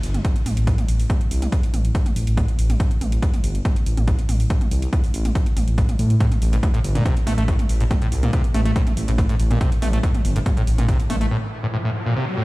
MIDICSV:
0, 0, Header, 1, 5, 480
1, 0, Start_track
1, 0, Tempo, 425532
1, 1239, Time_signature, 4, 2, 24, 8
1, 14036, End_track
2, 0, Start_track
2, 0, Title_t, "Acid bass"
2, 0, Program_c, 0, 38
2, 6998, Note_on_c, 0, 45, 81
2, 7066, Note_off_c, 0, 45, 0
2, 7362, Note_on_c, 0, 45, 74
2, 7401, Note_off_c, 0, 45, 0
2, 7478, Note_on_c, 0, 45, 80
2, 7519, Note_off_c, 0, 45, 0
2, 7601, Note_on_c, 0, 45, 74
2, 7666, Note_off_c, 0, 45, 0
2, 7843, Note_on_c, 0, 46, 77
2, 7938, Note_off_c, 0, 46, 0
2, 7957, Note_on_c, 0, 48, 82
2, 8060, Note_off_c, 0, 48, 0
2, 8198, Note_on_c, 0, 57, 102
2, 8267, Note_off_c, 0, 57, 0
2, 8322, Note_on_c, 0, 57, 78
2, 8386, Note_off_c, 0, 57, 0
2, 8439, Note_on_c, 0, 45, 81
2, 8507, Note_off_c, 0, 45, 0
2, 8804, Note_on_c, 0, 45, 78
2, 8842, Note_off_c, 0, 45, 0
2, 8920, Note_on_c, 0, 45, 81
2, 8960, Note_off_c, 0, 45, 0
2, 9043, Note_on_c, 0, 45, 78
2, 9107, Note_off_c, 0, 45, 0
2, 9284, Note_on_c, 0, 46, 77
2, 9379, Note_off_c, 0, 46, 0
2, 9399, Note_on_c, 0, 48, 84
2, 9501, Note_off_c, 0, 48, 0
2, 9638, Note_on_c, 0, 57, 100
2, 9707, Note_off_c, 0, 57, 0
2, 9762, Note_on_c, 0, 57, 76
2, 9826, Note_off_c, 0, 57, 0
2, 9878, Note_on_c, 0, 45, 85
2, 9946, Note_off_c, 0, 45, 0
2, 10241, Note_on_c, 0, 45, 80
2, 10280, Note_off_c, 0, 45, 0
2, 10357, Note_on_c, 0, 45, 84
2, 10399, Note_off_c, 0, 45, 0
2, 10482, Note_on_c, 0, 45, 80
2, 10546, Note_off_c, 0, 45, 0
2, 10723, Note_on_c, 0, 46, 77
2, 10818, Note_off_c, 0, 46, 0
2, 10839, Note_on_c, 0, 48, 81
2, 10941, Note_off_c, 0, 48, 0
2, 11078, Note_on_c, 0, 57, 102
2, 11147, Note_off_c, 0, 57, 0
2, 11203, Note_on_c, 0, 57, 76
2, 11266, Note_off_c, 0, 57, 0
2, 11320, Note_on_c, 0, 45, 87
2, 11388, Note_off_c, 0, 45, 0
2, 11683, Note_on_c, 0, 45, 77
2, 11721, Note_off_c, 0, 45, 0
2, 11799, Note_on_c, 0, 45, 82
2, 11840, Note_off_c, 0, 45, 0
2, 11922, Note_on_c, 0, 45, 76
2, 11986, Note_off_c, 0, 45, 0
2, 12162, Note_on_c, 0, 46, 78
2, 12258, Note_off_c, 0, 46, 0
2, 12278, Note_on_c, 0, 48, 85
2, 12381, Note_off_c, 0, 48, 0
2, 12518, Note_on_c, 0, 57, 101
2, 12587, Note_off_c, 0, 57, 0
2, 12643, Note_on_c, 0, 57, 79
2, 12706, Note_off_c, 0, 57, 0
2, 12759, Note_on_c, 0, 45, 84
2, 12827, Note_off_c, 0, 45, 0
2, 13122, Note_on_c, 0, 45, 77
2, 13161, Note_off_c, 0, 45, 0
2, 13238, Note_on_c, 0, 45, 83
2, 13279, Note_off_c, 0, 45, 0
2, 13361, Note_on_c, 0, 45, 78
2, 13426, Note_off_c, 0, 45, 0
2, 13602, Note_on_c, 0, 46, 80
2, 13698, Note_off_c, 0, 46, 0
2, 13717, Note_on_c, 0, 48, 83
2, 13820, Note_off_c, 0, 48, 0
2, 13957, Note_on_c, 0, 45, 78
2, 14026, Note_off_c, 0, 45, 0
2, 14036, End_track
3, 0, Start_track
3, 0, Title_t, "Detuned saw bass"
3, 0, Program_c, 1, 39
3, 38, Note_on_c, 1, 31, 101
3, 214, Note_off_c, 1, 31, 0
3, 518, Note_on_c, 1, 33, 96
3, 608, Note_off_c, 1, 33, 0
3, 642, Note_on_c, 1, 33, 99
3, 814, Note_off_c, 1, 33, 0
3, 998, Note_on_c, 1, 33, 87
3, 1175, Note_off_c, 1, 33, 0
3, 1478, Note_on_c, 1, 36, 94
3, 1655, Note_off_c, 1, 36, 0
3, 1958, Note_on_c, 1, 33, 101
3, 2135, Note_off_c, 1, 33, 0
3, 2439, Note_on_c, 1, 33, 102
3, 2529, Note_off_c, 1, 33, 0
3, 2563, Note_on_c, 1, 33, 96
3, 2735, Note_off_c, 1, 33, 0
3, 2918, Note_on_c, 1, 33, 84
3, 3095, Note_off_c, 1, 33, 0
3, 3398, Note_on_c, 1, 33, 100
3, 3575, Note_off_c, 1, 33, 0
3, 3878, Note_on_c, 1, 31, 101
3, 4054, Note_off_c, 1, 31, 0
3, 4358, Note_on_c, 1, 33, 92
3, 4448, Note_off_c, 1, 33, 0
3, 4483, Note_on_c, 1, 33, 96
3, 4655, Note_off_c, 1, 33, 0
3, 4839, Note_on_c, 1, 33, 87
3, 5015, Note_off_c, 1, 33, 0
3, 5319, Note_on_c, 1, 36, 98
3, 5495, Note_off_c, 1, 36, 0
3, 5799, Note_on_c, 1, 33, 100
3, 5975, Note_off_c, 1, 33, 0
3, 6279, Note_on_c, 1, 33, 104
3, 6369, Note_off_c, 1, 33, 0
3, 6403, Note_on_c, 1, 33, 95
3, 6575, Note_off_c, 1, 33, 0
3, 6759, Note_on_c, 1, 45, 99
3, 6935, Note_off_c, 1, 45, 0
3, 7239, Note_on_c, 1, 33, 101
3, 7415, Note_off_c, 1, 33, 0
3, 7718, Note_on_c, 1, 31, 98
3, 7895, Note_off_c, 1, 31, 0
3, 8199, Note_on_c, 1, 33, 92
3, 8289, Note_off_c, 1, 33, 0
3, 8323, Note_on_c, 1, 33, 103
3, 8495, Note_off_c, 1, 33, 0
3, 8680, Note_on_c, 1, 33, 90
3, 8855, Note_off_c, 1, 33, 0
3, 9159, Note_on_c, 1, 36, 99
3, 9335, Note_off_c, 1, 36, 0
3, 9639, Note_on_c, 1, 33, 101
3, 9815, Note_off_c, 1, 33, 0
3, 10119, Note_on_c, 1, 33, 100
3, 10209, Note_off_c, 1, 33, 0
3, 10243, Note_on_c, 1, 33, 98
3, 10415, Note_off_c, 1, 33, 0
3, 10598, Note_on_c, 1, 33, 86
3, 10775, Note_off_c, 1, 33, 0
3, 11079, Note_on_c, 1, 33, 103
3, 11255, Note_off_c, 1, 33, 0
3, 11559, Note_on_c, 1, 31, 100
3, 11735, Note_off_c, 1, 31, 0
3, 12039, Note_on_c, 1, 33, 98
3, 12129, Note_off_c, 1, 33, 0
3, 12163, Note_on_c, 1, 33, 101
3, 12335, Note_off_c, 1, 33, 0
3, 12521, Note_on_c, 1, 33, 90
3, 12696, Note_off_c, 1, 33, 0
3, 14036, End_track
4, 0, Start_track
4, 0, Title_t, "Riser"
4, 0, Program_c, 2, 103
4, 10839, Note_on_c, 2, 60, 79
4, 14036, Note_off_c, 2, 60, 0
4, 14036, End_track
5, 0, Start_track
5, 0, Title_t, "Drums"
5, 38, Note_on_c, 9, 46, 107
5, 151, Note_off_c, 9, 46, 0
5, 163, Note_on_c, 9, 42, 53
5, 163, Note_on_c, 9, 45, 66
5, 275, Note_off_c, 9, 42, 0
5, 275, Note_off_c, 9, 45, 0
5, 278, Note_on_c, 9, 36, 117
5, 278, Note_on_c, 9, 42, 81
5, 391, Note_off_c, 9, 36, 0
5, 391, Note_off_c, 9, 42, 0
5, 403, Note_on_c, 9, 42, 55
5, 516, Note_off_c, 9, 42, 0
5, 519, Note_on_c, 9, 45, 69
5, 519, Note_on_c, 9, 46, 109
5, 632, Note_off_c, 9, 45, 0
5, 632, Note_off_c, 9, 46, 0
5, 643, Note_on_c, 9, 42, 56
5, 756, Note_off_c, 9, 42, 0
5, 758, Note_on_c, 9, 36, 112
5, 759, Note_on_c, 9, 42, 84
5, 870, Note_off_c, 9, 36, 0
5, 871, Note_off_c, 9, 42, 0
5, 883, Note_on_c, 9, 42, 55
5, 883, Note_on_c, 9, 45, 65
5, 995, Note_off_c, 9, 42, 0
5, 995, Note_off_c, 9, 45, 0
5, 998, Note_on_c, 9, 46, 110
5, 1111, Note_off_c, 9, 46, 0
5, 1123, Note_on_c, 9, 46, 64
5, 1235, Note_off_c, 9, 46, 0
5, 1238, Note_on_c, 9, 36, 122
5, 1239, Note_on_c, 9, 42, 84
5, 1239, Note_on_c, 9, 45, 64
5, 1351, Note_off_c, 9, 36, 0
5, 1352, Note_off_c, 9, 42, 0
5, 1352, Note_off_c, 9, 45, 0
5, 1363, Note_on_c, 9, 42, 53
5, 1476, Note_off_c, 9, 42, 0
5, 1479, Note_on_c, 9, 46, 112
5, 1592, Note_off_c, 9, 46, 0
5, 1604, Note_on_c, 9, 42, 57
5, 1604, Note_on_c, 9, 45, 65
5, 1716, Note_off_c, 9, 42, 0
5, 1716, Note_off_c, 9, 45, 0
5, 1718, Note_on_c, 9, 36, 126
5, 1719, Note_on_c, 9, 42, 82
5, 1831, Note_off_c, 9, 36, 0
5, 1832, Note_off_c, 9, 42, 0
5, 1843, Note_on_c, 9, 42, 53
5, 1956, Note_off_c, 9, 42, 0
5, 1960, Note_on_c, 9, 45, 63
5, 1960, Note_on_c, 9, 46, 110
5, 2072, Note_off_c, 9, 45, 0
5, 2072, Note_off_c, 9, 46, 0
5, 2084, Note_on_c, 9, 42, 55
5, 2197, Note_off_c, 9, 42, 0
5, 2198, Note_on_c, 9, 36, 118
5, 2198, Note_on_c, 9, 42, 80
5, 2311, Note_off_c, 9, 36, 0
5, 2311, Note_off_c, 9, 42, 0
5, 2323, Note_on_c, 9, 42, 54
5, 2323, Note_on_c, 9, 45, 61
5, 2435, Note_off_c, 9, 42, 0
5, 2435, Note_off_c, 9, 45, 0
5, 2438, Note_on_c, 9, 46, 113
5, 2551, Note_off_c, 9, 46, 0
5, 2563, Note_on_c, 9, 42, 57
5, 2676, Note_off_c, 9, 42, 0
5, 2678, Note_on_c, 9, 36, 114
5, 2679, Note_on_c, 9, 42, 82
5, 2679, Note_on_c, 9, 45, 65
5, 2790, Note_off_c, 9, 36, 0
5, 2792, Note_off_c, 9, 42, 0
5, 2792, Note_off_c, 9, 45, 0
5, 2803, Note_on_c, 9, 42, 55
5, 2915, Note_off_c, 9, 42, 0
5, 2918, Note_on_c, 9, 46, 113
5, 3031, Note_off_c, 9, 46, 0
5, 3043, Note_on_c, 9, 42, 56
5, 3043, Note_on_c, 9, 45, 65
5, 3155, Note_off_c, 9, 42, 0
5, 3155, Note_off_c, 9, 45, 0
5, 3158, Note_on_c, 9, 36, 127
5, 3159, Note_on_c, 9, 42, 80
5, 3271, Note_off_c, 9, 36, 0
5, 3271, Note_off_c, 9, 42, 0
5, 3282, Note_on_c, 9, 42, 51
5, 3395, Note_off_c, 9, 42, 0
5, 3398, Note_on_c, 9, 45, 64
5, 3398, Note_on_c, 9, 46, 112
5, 3511, Note_off_c, 9, 45, 0
5, 3511, Note_off_c, 9, 46, 0
5, 3522, Note_on_c, 9, 42, 53
5, 3635, Note_off_c, 9, 42, 0
5, 3638, Note_on_c, 9, 36, 126
5, 3639, Note_on_c, 9, 42, 81
5, 3750, Note_off_c, 9, 36, 0
5, 3751, Note_off_c, 9, 42, 0
5, 3763, Note_on_c, 9, 42, 52
5, 3763, Note_on_c, 9, 45, 61
5, 3876, Note_off_c, 9, 42, 0
5, 3876, Note_off_c, 9, 45, 0
5, 3878, Note_on_c, 9, 46, 113
5, 3991, Note_off_c, 9, 46, 0
5, 4003, Note_on_c, 9, 42, 53
5, 4116, Note_off_c, 9, 42, 0
5, 4118, Note_on_c, 9, 36, 123
5, 4119, Note_on_c, 9, 42, 80
5, 4119, Note_on_c, 9, 45, 61
5, 4231, Note_off_c, 9, 36, 0
5, 4231, Note_off_c, 9, 42, 0
5, 4231, Note_off_c, 9, 45, 0
5, 4243, Note_on_c, 9, 42, 52
5, 4356, Note_off_c, 9, 42, 0
5, 4359, Note_on_c, 9, 46, 113
5, 4471, Note_off_c, 9, 46, 0
5, 4483, Note_on_c, 9, 42, 55
5, 4483, Note_on_c, 9, 45, 66
5, 4596, Note_off_c, 9, 42, 0
5, 4596, Note_off_c, 9, 45, 0
5, 4598, Note_on_c, 9, 36, 118
5, 4598, Note_on_c, 9, 42, 81
5, 4711, Note_off_c, 9, 36, 0
5, 4711, Note_off_c, 9, 42, 0
5, 4722, Note_on_c, 9, 42, 54
5, 4835, Note_off_c, 9, 42, 0
5, 4838, Note_on_c, 9, 45, 63
5, 4838, Note_on_c, 9, 46, 112
5, 4951, Note_off_c, 9, 45, 0
5, 4951, Note_off_c, 9, 46, 0
5, 4962, Note_on_c, 9, 46, 65
5, 5075, Note_off_c, 9, 46, 0
5, 5078, Note_on_c, 9, 36, 122
5, 5078, Note_on_c, 9, 42, 76
5, 5191, Note_off_c, 9, 36, 0
5, 5191, Note_off_c, 9, 42, 0
5, 5202, Note_on_c, 9, 42, 48
5, 5202, Note_on_c, 9, 45, 62
5, 5315, Note_off_c, 9, 42, 0
5, 5315, Note_off_c, 9, 45, 0
5, 5317, Note_on_c, 9, 46, 113
5, 5430, Note_off_c, 9, 46, 0
5, 5441, Note_on_c, 9, 42, 53
5, 5554, Note_off_c, 9, 42, 0
5, 5558, Note_on_c, 9, 36, 127
5, 5558, Note_on_c, 9, 42, 78
5, 5558, Note_on_c, 9, 45, 65
5, 5670, Note_off_c, 9, 36, 0
5, 5671, Note_off_c, 9, 42, 0
5, 5671, Note_off_c, 9, 45, 0
5, 5682, Note_on_c, 9, 46, 64
5, 5795, Note_off_c, 9, 46, 0
5, 5798, Note_on_c, 9, 46, 113
5, 5911, Note_off_c, 9, 46, 0
5, 5923, Note_on_c, 9, 42, 54
5, 5923, Note_on_c, 9, 45, 61
5, 6036, Note_off_c, 9, 42, 0
5, 6036, Note_off_c, 9, 45, 0
5, 6038, Note_on_c, 9, 36, 121
5, 6038, Note_on_c, 9, 42, 77
5, 6151, Note_off_c, 9, 36, 0
5, 6151, Note_off_c, 9, 42, 0
5, 6162, Note_on_c, 9, 42, 52
5, 6275, Note_off_c, 9, 42, 0
5, 6279, Note_on_c, 9, 45, 67
5, 6279, Note_on_c, 9, 46, 114
5, 6392, Note_off_c, 9, 45, 0
5, 6392, Note_off_c, 9, 46, 0
5, 6403, Note_on_c, 9, 42, 52
5, 6516, Note_off_c, 9, 42, 0
5, 6518, Note_on_c, 9, 36, 117
5, 6519, Note_on_c, 9, 42, 81
5, 6631, Note_off_c, 9, 36, 0
5, 6632, Note_off_c, 9, 42, 0
5, 6643, Note_on_c, 9, 42, 53
5, 6643, Note_on_c, 9, 45, 64
5, 6756, Note_off_c, 9, 42, 0
5, 6756, Note_off_c, 9, 45, 0
5, 6759, Note_on_c, 9, 46, 109
5, 6872, Note_off_c, 9, 46, 0
5, 6883, Note_on_c, 9, 42, 53
5, 6996, Note_off_c, 9, 42, 0
5, 6998, Note_on_c, 9, 36, 121
5, 6999, Note_on_c, 9, 42, 77
5, 7111, Note_off_c, 9, 36, 0
5, 7112, Note_off_c, 9, 42, 0
5, 7124, Note_on_c, 9, 42, 50
5, 7124, Note_on_c, 9, 45, 63
5, 7237, Note_off_c, 9, 42, 0
5, 7237, Note_off_c, 9, 45, 0
5, 7240, Note_on_c, 9, 46, 106
5, 7353, Note_off_c, 9, 46, 0
5, 7365, Note_on_c, 9, 42, 51
5, 7478, Note_off_c, 9, 42, 0
5, 7478, Note_on_c, 9, 36, 126
5, 7481, Note_on_c, 9, 42, 76
5, 7481, Note_on_c, 9, 45, 67
5, 7591, Note_off_c, 9, 36, 0
5, 7594, Note_off_c, 9, 42, 0
5, 7594, Note_off_c, 9, 45, 0
5, 7605, Note_on_c, 9, 42, 50
5, 7718, Note_off_c, 9, 42, 0
5, 7720, Note_on_c, 9, 46, 110
5, 7833, Note_off_c, 9, 46, 0
5, 7844, Note_on_c, 9, 42, 49
5, 7844, Note_on_c, 9, 45, 66
5, 7956, Note_off_c, 9, 42, 0
5, 7956, Note_off_c, 9, 45, 0
5, 7959, Note_on_c, 9, 36, 121
5, 7960, Note_on_c, 9, 42, 75
5, 8071, Note_off_c, 9, 36, 0
5, 8073, Note_off_c, 9, 42, 0
5, 8084, Note_on_c, 9, 42, 48
5, 8197, Note_off_c, 9, 42, 0
5, 8200, Note_on_c, 9, 45, 68
5, 8200, Note_on_c, 9, 46, 110
5, 8312, Note_off_c, 9, 45, 0
5, 8312, Note_off_c, 9, 46, 0
5, 8324, Note_on_c, 9, 42, 51
5, 8437, Note_off_c, 9, 42, 0
5, 8439, Note_on_c, 9, 36, 113
5, 8440, Note_on_c, 9, 42, 78
5, 8552, Note_off_c, 9, 36, 0
5, 8552, Note_off_c, 9, 42, 0
5, 8563, Note_on_c, 9, 42, 52
5, 8563, Note_on_c, 9, 45, 66
5, 8676, Note_off_c, 9, 42, 0
5, 8676, Note_off_c, 9, 45, 0
5, 8678, Note_on_c, 9, 46, 109
5, 8791, Note_off_c, 9, 46, 0
5, 8803, Note_on_c, 9, 46, 62
5, 8916, Note_off_c, 9, 46, 0
5, 8919, Note_on_c, 9, 36, 113
5, 8920, Note_on_c, 9, 42, 75
5, 8920, Note_on_c, 9, 45, 69
5, 9032, Note_off_c, 9, 36, 0
5, 9032, Note_off_c, 9, 42, 0
5, 9032, Note_off_c, 9, 45, 0
5, 9043, Note_on_c, 9, 42, 50
5, 9156, Note_off_c, 9, 42, 0
5, 9159, Note_on_c, 9, 46, 102
5, 9272, Note_off_c, 9, 46, 0
5, 9283, Note_on_c, 9, 42, 53
5, 9283, Note_on_c, 9, 45, 70
5, 9396, Note_off_c, 9, 42, 0
5, 9396, Note_off_c, 9, 45, 0
5, 9398, Note_on_c, 9, 42, 75
5, 9399, Note_on_c, 9, 36, 115
5, 9511, Note_off_c, 9, 42, 0
5, 9512, Note_off_c, 9, 36, 0
5, 9523, Note_on_c, 9, 42, 50
5, 9636, Note_off_c, 9, 42, 0
5, 9638, Note_on_c, 9, 45, 70
5, 9638, Note_on_c, 9, 46, 103
5, 9751, Note_off_c, 9, 45, 0
5, 9751, Note_off_c, 9, 46, 0
5, 9763, Note_on_c, 9, 42, 50
5, 9876, Note_off_c, 9, 42, 0
5, 9879, Note_on_c, 9, 36, 118
5, 9879, Note_on_c, 9, 42, 75
5, 9991, Note_off_c, 9, 36, 0
5, 9992, Note_off_c, 9, 42, 0
5, 10003, Note_on_c, 9, 42, 49
5, 10003, Note_on_c, 9, 45, 67
5, 10115, Note_off_c, 9, 42, 0
5, 10115, Note_off_c, 9, 45, 0
5, 10119, Note_on_c, 9, 46, 104
5, 10231, Note_off_c, 9, 46, 0
5, 10243, Note_on_c, 9, 42, 53
5, 10356, Note_off_c, 9, 42, 0
5, 10358, Note_on_c, 9, 36, 114
5, 10359, Note_on_c, 9, 42, 80
5, 10359, Note_on_c, 9, 45, 72
5, 10471, Note_off_c, 9, 36, 0
5, 10472, Note_off_c, 9, 42, 0
5, 10472, Note_off_c, 9, 45, 0
5, 10483, Note_on_c, 9, 42, 51
5, 10595, Note_off_c, 9, 42, 0
5, 10598, Note_on_c, 9, 46, 105
5, 10711, Note_off_c, 9, 46, 0
5, 10723, Note_on_c, 9, 42, 53
5, 10723, Note_on_c, 9, 45, 72
5, 10836, Note_off_c, 9, 42, 0
5, 10836, Note_off_c, 9, 45, 0
5, 10838, Note_on_c, 9, 36, 114
5, 10839, Note_on_c, 9, 42, 80
5, 10951, Note_off_c, 9, 36, 0
5, 10952, Note_off_c, 9, 42, 0
5, 10963, Note_on_c, 9, 42, 51
5, 11076, Note_off_c, 9, 42, 0
5, 11079, Note_on_c, 9, 45, 70
5, 11079, Note_on_c, 9, 46, 103
5, 11192, Note_off_c, 9, 45, 0
5, 11192, Note_off_c, 9, 46, 0
5, 11203, Note_on_c, 9, 42, 53
5, 11316, Note_off_c, 9, 42, 0
5, 11318, Note_on_c, 9, 36, 116
5, 11320, Note_on_c, 9, 42, 78
5, 11431, Note_off_c, 9, 36, 0
5, 11433, Note_off_c, 9, 42, 0
5, 11444, Note_on_c, 9, 42, 52
5, 11444, Note_on_c, 9, 45, 72
5, 11557, Note_off_c, 9, 42, 0
5, 11557, Note_off_c, 9, 45, 0
5, 11560, Note_on_c, 9, 46, 105
5, 11673, Note_off_c, 9, 46, 0
5, 11684, Note_on_c, 9, 42, 50
5, 11797, Note_off_c, 9, 42, 0
5, 11798, Note_on_c, 9, 36, 109
5, 11800, Note_on_c, 9, 42, 79
5, 11800, Note_on_c, 9, 45, 70
5, 11911, Note_off_c, 9, 36, 0
5, 11913, Note_off_c, 9, 42, 0
5, 11913, Note_off_c, 9, 45, 0
5, 11923, Note_on_c, 9, 42, 51
5, 12036, Note_off_c, 9, 42, 0
5, 12040, Note_on_c, 9, 46, 106
5, 12152, Note_off_c, 9, 46, 0
5, 12164, Note_on_c, 9, 42, 52
5, 12164, Note_on_c, 9, 45, 70
5, 12277, Note_off_c, 9, 42, 0
5, 12277, Note_off_c, 9, 45, 0
5, 12279, Note_on_c, 9, 36, 111
5, 12280, Note_on_c, 9, 42, 81
5, 12391, Note_off_c, 9, 36, 0
5, 12392, Note_off_c, 9, 42, 0
5, 12404, Note_on_c, 9, 42, 50
5, 12517, Note_off_c, 9, 42, 0
5, 12520, Note_on_c, 9, 45, 73
5, 12520, Note_on_c, 9, 46, 102
5, 12633, Note_off_c, 9, 45, 0
5, 12633, Note_off_c, 9, 46, 0
5, 12644, Note_on_c, 9, 46, 60
5, 12757, Note_off_c, 9, 46, 0
5, 14036, End_track
0, 0, End_of_file